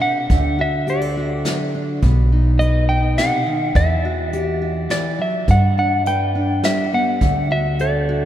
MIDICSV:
0, 0, Header, 1, 5, 480
1, 0, Start_track
1, 0, Key_signature, 1, "major"
1, 0, Tempo, 576369
1, 246, Time_signature, 3, 2, 24, 8
1, 6871, End_track
2, 0, Start_track
2, 0, Title_t, "Clean electric guitar"
2, 0, Program_c, 0, 27
2, 13, Note_on_c, 0, 78, 81
2, 504, Note_off_c, 0, 78, 0
2, 510, Note_on_c, 0, 76, 70
2, 722, Note_off_c, 0, 76, 0
2, 748, Note_on_c, 0, 74, 67
2, 1423, Note_off_c, 0, 74, 0
2, 2159, Note_on_c, 0, 75, 83
2, 2402, Note_off_c, 0, 75, 0
2, 2406, Note_on_c, 0, 79, 86
2, 2645, Note_off_c, 0, 79, 0
2, 2648, Note_on_c, 0, 78, 86
2, 3130, Note_off_c, 0, 78, 0
2, 3134, Note_on_c, 0, 76, 89
2, 4090, Note_on_c, 0, 74, 70
2, 4118, Note_off_c, 0, 76, 0
2, 4311, Note_off_c, 0, 74, 0
2, 4344, Note_on_c, 0, 76, 70
2, 4558, Note_off_c, 0, 76, 0
2, 4587, Note_on_c, 0, 78, 83
2, 4811, Note_off_c, 0, 78, 0
2, 4821, Note_on_c, 0, 78, 83
2, 5037, Note_off_c, 0, 78, 0
2, 5057, Note_on_c, 0, 79, 80
2, 5535, Note_off_c, 0, 79, 0
2, 5538, Note_on_c, 0, 76, 80
2, 5779, Note_off_c, 0, 76, 0
2, 5783, Note_on_c, 0, 78, 73
2, 6258, Note_off_c, 0, 78, 0
2, 6261, Note_on_c, 0, 76, 77
2, 6501, Note_off_c, 0, 76, 0
2, 6504, Note_on_c, 0, 74, 65
2, 6871, Note_off_c, 0, 74, 0
2, 6871, End_track
3, 0, Start_track
3, 0, Title_t, "Steel-string acoustic guitar"
3, 0, Program_c, 1, 25
3, 0, Note_on_c, 1, 62, 51
3, 0, Note_on_c, 1, 71, 53
3, 6, Note_on_c, 1, 48, 53
3, 221, Note_off_c, 1, 71, 0
3, 246, Note_off_c, 1, 48, 0
3, 253, Note_on_c, 1, 50, 63
3, 486, Note_off_c, 1, 62, 0
3, 489, Note_on_c, 1, 66, 49
3, 724, Note_on_c, 1, 67, 54
3, 846, Note_off_c, 1, 67, 0
3, 846, Note_on_c, 1, 69, 49
3, 972, Note_off_c, 1, 66, 0
3, 975, Note_on_c, 1, 66, 49
3, 1206, Note_on_c, 1, 54, 61
3, 1455, Note_on_c, 1, 62, 52
3, 1660, Note_off_c, 1, 50, 0
3, 1661, Note_off_c, 1, 62, 0
3, 1685, Note_off_c, 1, 69, 0
3, 1687, Note_on_c, 1, 47, 64
3, 1931, Note_off_c, 1, 66, 0
3, 1934, Note_on_c, 1, 63, 49
3, 2172, Note_on_c, 1, 71, 52
3, 2403, Note_off_c, 1, 63, 0
3, 2413, Note_on_c, 1, 63, 55
3, 2644, Note_on_c, 1, 48, 57
3, 2669, Note_off_c, 1, 54, 0
3, 2883, Note_off_c, 1, 48, 0
3, 2886, Note_on_c, 1, 51, 52
3, 3096, Note_off_c, 1, 47, 0
3, 3100, Note_off_c, 1, 63, 0
3, 3121, Note_off_c, 1, 51, 0
3, 3125, Note_on_c, 1, 52, 66
3, 3373, Note_on_c, 1, 66, 49
3, 3604, Note_off_c, 1, 71, 0
3, 3607, Note_on_c, 1, 67, 54
3, 3841, Note_off_c, 1, 66, 0
3, 3845, Note_on_c, 1, 66, 46
3, 4075, Note_off_c, 1, 52, 0
3, 4085, Note_on_c, 1, 52, 56
3, 4319, Note_on_c, 1, 54, 53
3, 4325, Note_off_c, 1, 52, 0
3, 4562, Note_off_c, 1, 54, 0
3, 4563, Note_on_c, 1, 43, 57
3, 4588, Note_off_c, 1, 66, 0
3, 4813, Note_on_c, 1, 62, 46
3, 5046, Note_off_c, 1, 67, 0
3, 5059, Note_on_c, 1, 71, 52
3, 5287, Note_off_c, 1, 62, 0
3, 5291, Note_on_c, 1, 62, 47
3, 5529, Note_on_c, 1, 55, 58
3, 5773, Note_on_c, 1, 59, 51
3, 5979, Note_off_c, 1, 55, 0
3, 5981, Note_off_c, 1, 59, 0
3, 5984, Note_off_c, 1, 71, 0
3, 6004, Note_on_c, 1, 50, 69
3, 6005, Note_off_c, 1, 43, 0
3, 6249, Note_off_c, 1, 62, 0
3, 6252, Note_on_c, 1, 66, 51
3, 6494, Note_on_c, 1, 69, 59
3, 6732, Note_off_c, 1, 66, 0
3, 6736, Note_on_c, 1, 66, 54
3, 6871, Note_off_c, 1, 50, 0
3, 6871, Note_off_c, 1, 66, 0
3, 6871, Note_off_c, 1, 69, 0
3, 6871, End_track
4, 0, Start_track
4, 0, Title_t, "Upright bass"
4, 0, Program_c, 2, 32
4, 249, Note_on_c, 2, 38, 89
4, 1174, Note_off_c, 2, 38, 0
4, 1689, Note_on_c, 2, 35, 95
4, 2613, Note_off_c, 2, 35, 0
4, 3126, Note_on_c, 2, 40, 95
4, 4052, Note_off_c, 2, 40, 0
4, 4566, Note_on_c, 2, 43, 88
4, 5492, Note_off_c, 2, 43, 0
4, 6009, Note_on_c, 2, 38, 93
4, 6871, Note_off_c, 2, 38, 0
4, 6871, End_track
5, 0, Start_track
5, 0, Title_t, "Drums"
5, 248, Note_on_c, 9, 42, 46
5, 249, Note_on_c, 9, 36, 76
5, 331, Note_off_c, 9, 42, 0
5, 332, Note_off_c, 9, 36, 0
5, 729, Note_on_c, 9, 42, 47
5, 812, Note_off_c, 9, 42, 0
5, 1207, Note_on_c, 9, 38, 56
5, 1207, Note_on_c, 9, 42, 47
5, 1290, Note_off_c, 9, 38, 0
5, 1290, Note_off_c, 9, 42, 0
5, 1684, Note_on_c, 9, 42, 44
5, 1687, Note_on_c, 9, 36, 75
5, 1767, Note_off_c, 9, 42, 0
5, 1770, Note_off_c, 9, 36, 0
5, 2168, Note_on_c, 9, 42, 44
5, 2252, Note_off_c, 9, 42, 0
5, 2647, Note_on_c, 9, 38, 60
5, 2647, Note_on_c, 9, 42, 44
5, 2730, Note_off_c, 9, 38, 0
5, 2730, Note_off_c, 9, 42, 0
5, 3125, Note_on_c, 9, 36, 83
5, 3125, Note_on_c, 9, 42, 41
5, 3208, Note_off_c, 9, 36, 0
5, 3208, Note_off_c, 9, 42, 0
5, 3604, Note_on_c, 9, 42, 43
5, 3688, Note_off_c, 9, 42, 0
5, 4082, Note_on_c, 9, 38, 56
5, 4082, Note_on_c, 9, 42, 46
5, 4165, Note_off_c, 9, 38, 0
5, 4165, Note_off_c, 9, 42, 0
5, 4562, Note_on_c, 9, 42, 43
5, 4564, Note_on_c, 9, 36, 78
5, 4645, Note_off_c, 9, 42, 0
5, 4647, Note_off_c, 9, 36, 0
5, 5046, Note_on_c, 9, 42, 51
5, 5129, Note_off_c, 9, 42, 0
5, 5525, Note_on_c, 9, 38, 56
5, 5525, Note_on_c, 9, 42, 42
5, 5608, Note_off_c, 9, 38, 0
5, 5608, Note_off_c, 9, 42, 0
5, 6006, Note_on_c, 9, 42, 45
5, 6007, Note_on_c, 9, 36, 78
5, 6089, Note_off_c, 9, 42, 0
5, 6090, Note_off_c, 9, 36, 0
5, 6489, Note_on_c, 9, 42, 46
5, 6572, Note_off_c, 9, 42, 0
5, 6871, End_track
0, 0, End_of_file